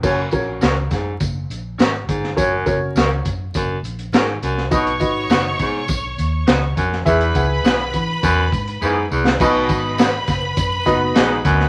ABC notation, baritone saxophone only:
X:1
M:4/4
L:1/16
Q:1/4=102
K:B
V:1 name="Baritone saxophone" clef=bass
F,,2 z4 G,,2 z6 G,,2 | F,,3 z4 z F,,2 z2 G,,2 F,,2 | B,,2 z4 G,,2 z6 F,,2 | E,,3 z4 z F,,2 z2 G,,2 E,,2 |
B,,3 z8 z G,,2 F,,2 |]